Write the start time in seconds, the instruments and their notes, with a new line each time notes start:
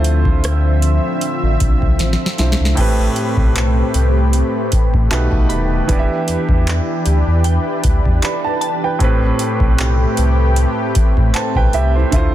Already playing: sub bass D2, grand piano D3 A3 E4 F4 C5, analog synth pad D3 F3 C4 E5
0.04 closed hi-hat
0.25 kick
0.44 cross-stick, closed hi-hat
0.82 closed hi-hat
1.21 closed hi-hat
1.43 sub bass A1
1.60 sub bass B1, kick, closed hi-hat
1.82 sub bass C2, kick
1.99 sub bass A1, snare, closed hi-hat
2.13 snare
2.26 snare
2.38 sub bass B1, grand piano D3 A3 E4 F4 C5, snare, closed hi-hat
2.52 snare
2.60 sub bass C2
2.65 snare
2.75 sub bass A1, grand piano A2 A3 C4 G4, analog synth pad A3 C4 G4 B4, synth pluck G5, kick, closed hi-hat, crash
2.80 grand piano B4
3.16 closed hi-hat
3.37 sub bass B1, kick
3.56 clap, closed hi-hat
3.94 sub bass C2, closed hi-hat
4.33 closed hi-hat
4.72 sub bass A1, kick, closed hi-hat
4.94 sub bass A2, kick
5.11 sub bass B1, grand piano B2 A3 D#4 G4 B4, analog synth pad D#3 G4, clap, closed hi-hat
5.32 sub bass B1, kick
5.49 sub bass D#1, synth pluck B5, closed hi-hat
5.88 sub bass E1, grand piano E3 B3 D4 G4, analog synth pad E3 D4 B4, kick, closed hi-hat
5.92 grand piano D5
5.99 grand piano E5
6.28 sub bass E2, closed hi-hat
6.49 sub bass E2, kick
6.67 clap, closed hi-hat
7.06 sub bass D2, closed hi-hat
7.27 sub bass E2
7.44 synth pluck G5, closed hi-hat
7.84 sub bass D2, kick, closed hi-hat
8.06 sub bass E2, kick
8.22 grand piano D5 B5, clap, closed hi-hat
8.45 grand piano A5
8.61 synth pluck A5, closed hi-hat
8.84 grand piano B4 G5
8.99 sub bass A1, grand piano A2 A3 C4 G4, analog synth pad A3 C4 G4, kick, closed hi-hat
9.04 grand piano B4
9.39 closed hi-hat
9.60 sub bass B1, kick
9.78 clap, closed hi-hat
10.17 sub bass C2, closed hi-hat
10.56 closed hi-hat
10.95 sub bass A1, kick, closed hi-hat
11.17 sub bass A2, kick
11.34 grand piano C5 A5, synth pluck G5, clap, closed hi-hat
11.55 sub bass B1, grand piano B4 G5, kick
11.73 sub bass C2, grand piano G4 E5, closed hi-hat
11.96 grand piano E4 C5
12.11 sub bass D2, grand piano D3 A3 E4 F4, analog synth pad F3 D4 E5, kick, closed hi-hat
12.16 grand piano C5